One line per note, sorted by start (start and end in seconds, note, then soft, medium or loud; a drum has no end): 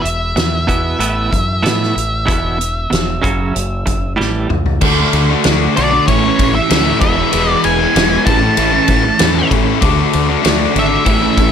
0.02 0.33 E1 medium
0.02 0.33 E2 medium
0.02 0.33 B2 medium
0.02 4.13 E5 medium
0.02 closed hi-hat medium
0.36 0.94 E2 medium
0.36 0.65 E2 medium
0.36 0.65 B2 medium
0.36 snare loud
0.36 closed hi-hat medium
0.67 0.98 E2 medium
0.67 0.98 B2 medium
0.67 0.99 E3 loud
0.67 kick medium
0.67 closed hi-hat medium
0.99 1.28 A1 medium
0.99 1.30 A2 medium
0.99 1.30 E3 medium
0.99 1.30 B3 medium
0.99 closed hi-hat medium
1.31 1.61 F#2 medium
1.31 1.60 A2 medium
1.31 1.61 E3 medium
1.31 kick medium
1.31 closed hi-hat medium
1.63 1.93 A2 medium
1.63 1.92 A2 medium
1.63 1.94 E3 medium
1.63 1.94 B3 medium
1.63 closed hi-hat medium
1.67 snare loud
1.83 snare soft
1.95 2.25 A1 medium
1.95 2.24 A2 medium
1.95 2.25 E3 medium
1.95 closed hi-hat medium
2.26 2.85 E1 medium
2.26 2.57 E2 medium
2.26 2.57 B2 loud
2.26 2.57 E3 loud
2.26 kick loud
2.26 closed hi-hat medium
2.58 2.88 E2 medium
2.58 2.88 B2 medium
2.58 closed hi-hat medium
2.90 3.20 E1 medium
2.90 3.19 E2 medium
2.90 3.20 B2 medium
2.90 snare loud
2.90 closed hi-hat medium
3.22 3.52 F#1 medium
3.22 3.52 F#2 medium
3.22 3.53 C#3 medium
3.22 3.53 F#3 medium
3.22 kick medium
3.22 closed hi-hat medium
3.54 3.84 F#1 medium
3.54 3.83 F#2 medium
3.54 3.84 C#3 medium
3.54 closed hi-hat medium
3.86 4.15 F#1 medium
3.86 4.15 F#2 medium
3.86 4.15 C#3 medium
3.86 kick medium
3.86 closed hi-hat medium
4.16 4.48 A1 medium
4.16 4.47 A2 medium
4.16 4.48 E3 medium
4.16 4.48 G3 loud
4.21 snare soft
4.49 4.79 C#2 medium
4.49 4.78 A2 medium
4.49 4.78 E3 medium
4.49 mid tom medium
4.66 floor tom medium
4.81 5.03 D2 medium
4.81 5.30 D3 medium
4.81 4.99 A3 medium
4.81 4.98 D4 medium
4.81 kick loud
4.81 crash loud
4.85 4.97 F#4 loud
4.98 5.32 A3 medium
4.98 5.31 D4 medium
4.98 5.30 F#4 medium
5.13 5.34 D2 medium
5.13 ride medium
5.31 5.46 A3 medium
5.31 5.46 D4 medium
5.31 5.47 F#4 medium
5.44 5.66 D2 medium
5.44 5.75 D3 medium
5.44 5.76 A3 medium
5.44 5.77 D4 loud
5.44 snare loud
5.44 ride medium
5.49 5.77 F#4 medium
5.77 5.98 B1 medium
5.77 6.06 D3 medium
5.77 5.93 A3 medium
5.77 5.92 D4 medium
5.77 5.91 F#4 medium
5.77 6.07 D5 medium
5.77 ride medium
5.92 6.07 A3 medium
5.92 6.06 D4 medium
5.92 6.06 F#4 medium
5.92 muted distorted electric guitar stroke soft
6.07 6.29 A1 medium
6.07 6.55 A2 medium
6.07 6.40 E3 medium
6.07 6.25 A3 medium
6.07 6.25 C#4 medium
6.07 6.24 E4 medium
6.07 6.55 C#5 medium
6.07 kick medium
6.07 ride medium
6.25 6.41 A3 medium
6.25 6.42 C#4 medium
6.25 6.43 E4 medium
6.39 6.59 A1 medium
6.39 6.70 E3 medium
6.39 6.59 A3 medium
6.39 kick medium
6.39 ride medium
6.43 6.57 C#4 medium
6.43 6.56 E4 medium
6.54 6.72 E4 medium
6.54 7.00 E5 medium
6.54 muted distorted electric guitar stroke soft
6.58 6.71 A3 medium
6.58 6.71 C#4 medium
6.70 6.91 D2 medium
6.70 7.00 A2 medium
6.70 7.00 E3 loud
6.70 7.01 A3 medium
6.70 7.01 C#4 medium
6.70 7.01 E4 loud
6.70 snare loud
6.70 ride loud
7.01 7.22 E1 medium
7.01 7.32 E3 medium
7.01 7.17 G#3 medium
7.01 7.17 B3 loud
7.01 7.15 E4 medium
7.01 7.51 E5 medium
7.01 kick loud
7.01 ride medium
7.16 7.33 G#3 medium
7.16 7.34 B3 medium
7.16 7.35 E4 medium
7.33 7.54 E1 medium
7.33 7.80 E3 loud
7.33 7.50 G#3 medium
7.33 7.48 B3 loud
7.33 7.48 E4 loud
7.33 ride loud
7.49 7.80 G#3 medium
7.49 7.79 B3 medium
7.49 7.78 E4 medium
7.49 7.66 D5 medium
7.64 7.85 E1 medium
7.64 8.23 G#5 loud
7.64 ride medium
7.79 7.95 G#3 medium
7.79 7.96 B3 medium
7.79 7.97 E4 medium
7.95 8.16 E1 loud
7.95 8.25 E3 medium
7.95 8.26 G#3 medium
7.95 8.26 B3 loud
7.95 8.26 E4 loud
7.95 snare loud
7.95 ride loud
8.26 8.48 A1 medium
8.26 8.74 A2 medium
8.26 8.74 E3 medium
8.26 8.44 A3 loud
8.26 8.43 C#4 loud
8.26 8.42 E4 loud
8.26 9.47 A5 loud
8.26 kick loud
8.26 ride medium
8.40 8.73 C#4 medium
8.40 8.71 E4 medium
8.40 muted distorted electric guitar stroke medium
8.45 8.74 A3 medium
8.57 8.78 A1 loud
8.57 9.04 E3 medium
8.57 8.72 A3 medium
8.57 8.72 C#4 medium
8.57 8.72 E4 medium
8.57 ride medium
8.73 8.89 A3 medium
8.73 8.89 C#4 medium
8.73 8.90 E4 medium
8.88 9.10 A1 medium
8.88 9.20 E3 medium
8.88 9.06 A3 medium
8.88 9.05 C#4 medium
8.88 9.03 E4 medium
8.88 kick medium
8.88 ride medium
9.04 9.20 A3 medium
9.04 9.21 C#4 medium
9.04 9.22 E4 medium
9.04 muted distorted electric guitar stroke medium
9.19 9.41 E2 medium
9.19 9.81 A2 medium
9.19 9.48 E3 medium
9.19 9.50 A3 loud
9.19 9.50 C#4 loud
9.19 9.52 E4 loud
9.19 snare loud
9.19 ride loud
9.50 9.72 A1 medium
9.50 9.80 E3 medium
9.50 9.66 A3 medium
9.50 9.65 C#4 medium
9.50 9.64 E4 medium
9.50 kick medium
9.50 ride medium
9.65 9.80 A3 medium
9.65 9.80 C#4 medium
9.65 9.80 E4 medium
9.81 10.03 D2 medium
9.81 10.28 D3 loud
9.81 9.99 A3 medium
9.81 9.98 D4 loud
9.81 9.96 F#4 loud
9.81 kick loud
9.81 ride medium
9.97 10.30 A3 medium
9.97 10.28 D4 medium
9.97 10.27 F#4 medium
10.13 10.35 D2 medium
10.13 ride medium
10.29 10.44 A3 medium
10.29 10.44 D4 medium
10.29 10.45 F#4 medium
10.44 10.66 D2 loud
10.44 10.74 D3 medium
10.44 10.75 A3 loud
10.44 10.76 D4 loud
10.44 10.77 F#4 loud
10.44 snare loud
10.44 ride medium
10.75 10.96 G#1 medium
10.75 11.05 D3 medium
10.75 10.91 A3 medium
10.75 10.90 D4 medium
10.75 10.88 F#4 medium
10.75 11.52 E5 medium
10.75 ride medium
10.89 11.05 A3 medium
10.89 11.05 D4 medium
10.89 11.04 F#4 medium
10.89 muted distorted electric guitar stroke medium
11.06 11.27 A1 loud
11.06 11.52 A2 loud
11.06 11.37 E3 medium
11.06 11.23 A3 loud
11.06 11.22 C#4 medium
11.06 11.21 E4 loud
11.06 kick medium
11.06 ride medium
11.22 11.37 A3 medium
11.22 11.38 C#4 medium
11.22 11.39 E4 medium
11.38 11.52 A1 medium
11.38 11.52 E3 medium
11.38 11.52 A3 medium
11.38 11.52 C#4 medium
11.38 11.52 E4 medium
11.38 kick medium
11.38 ride medium